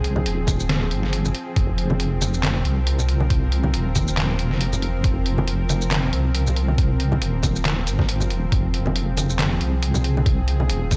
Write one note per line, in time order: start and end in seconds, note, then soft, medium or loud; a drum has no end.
0.00 0.27 C2 medium
0.00 10.97 F3 medium
0.00 10.97 C4 medium
0.00 1.55 G#4 medium
0.04 closed hi-hat medium
0.16 high conga medium
0.16 low conga medium
0.26 0.93 D#1 loud
0.26 closed hi-hat medium
0.47 kick medium
0.47 closed hi-hat soft
0.47 high conga medium
0.47 shaker medium
0.60 shaker medium
0.69 snare loud
0.69 closed hi-hat medium
0.91 1.33 G1 medium
0.91 closed hi-hat medium
1.03 snare soft
1.13 closed hi-hat medium
1.25 low conga medium
1.25 shaker medium
1.35 closed hi-hat soft
1.56 2.64 F1 loud
1.56 8.50 A#4 medium
1.56 kick loud
1.56 closed hi-hat medium
1.78 closed hi-hat soft
1.90 high conga medium
1.90 low conga medium
2.00 closed hi-hat medium
2.22 closed hi-hat soft
2.22 high conga medium
2.22 shaker medium
2.34 shaker medium
2.43 snare loud
2.43 clap medium
2.43 closed hi-hat medium
2.65 3.75 C2 loud
2.65 closed hi-hat medium
2.87 closed hi-hat medium
2.99 low conga medium
2.99 shaker medium
3.09 closed hi-hat soft
3.20 high conga medium
3.30 kick loud
3.30 closed hi-hat medium
3.52 closed hi-hat medium
3.64 high conga medium
3.64 low conga medium
3.74 4.53 D#1 loud
3.74 closed hi-hat medium
3.96 kick medium
3.96 closed hi-hat medium
3.96 high conga medium
3.96 shaker medium
4.08 shaker medium
4.17 snare loud
4.17 clap medium
4.17 closed hi-hat medium
4.39 closed hi-hat medium
4.51 5.03 F1 medium
4.51 snare soft
4.61 closed hi-hat medium
4.73 low conga medium
4.73 shaker medium
4.82 closed hi-hat medium
5.04 6.12 F1 loud
5.04 kick loud
5.04 closed hi-hat medium
5.26 closed hi-hat medium
5.38 high conga medium
5.38 low conga medium
5.48 closed hi-hat medium
5.69 closed hi-hat medium
5.69 high conga medium
5.69 shaker medium
5.82 shaker medium
5.91 snare loud
5.91 clap medium
5.91 closed hi-hat medium
6.13 7.23 C2 medium
6.13 closed hi-hat medium
6.35 closed hi-hat medium
6.47 low conga medium
6.47 shaker medium
6.56 closed hi-hat medium
6.68 high conga medium
6.78 kick loud
6.78 closed hi-hat medium
7.00 closed hi-hat medium
7.12 high conga medium
7.12 low conga medium
7.21 7.88 D#1 loud
7.21 closed hi-hat medium
7.43 kick medium
7.43 closed hi-hat medium
7.43 high conga medium
7.43 shaker medium
7.56 shaker medium
7.65 snare loud
7.65 clap medium
7.65 closed hi-hat medium
7.87 8.32 G1 medium
7.87 closed hi-hat medium
7.87 shaker medium
7.99 kick medium
7.99 snare soft
7.99 low conga medium
8.09 closed hi-hat medium
8.20 low conga medium
8.20 shaker medium
8.30 8.50 D#1 medium
8.30 closed hi-hat medium
8.52 9.60 F1 loud
8.52 10.97 G#4 medium
8.52 kick loud
8.52 closed hi-hat medium
8.74 closed hi-hat medium
8.86 high conga medium
8.86 low conga medium
8.96 closed hi-hat medium
9.17 closed hi-hat medium
9.17 high conga medium
9.17 shaker medium
9.29 shaker medium
9.39 snare loud
9.39 clap loud
9.39 closed hi-hat medium
9.61 10.71 C2 medium
9.61 closed hi-hat medium
9.83 closed hi-hat medium
9.94 low conga medium
9.94 shaker soft
10.04 closed hi-hat medium
10.17 high conga medium
10.26 kick loud
10.26 closed hi-hat medium
10.48 closed hi-hat medium
10.60 high conga medium
10.60 low conga medium
10.70 10.97 D#1 loud
10.70 closed hi-hat medium
10.91 kick medium
10.91 closed hi-hat medium
10.91 high conga medium
10.91 shaker medium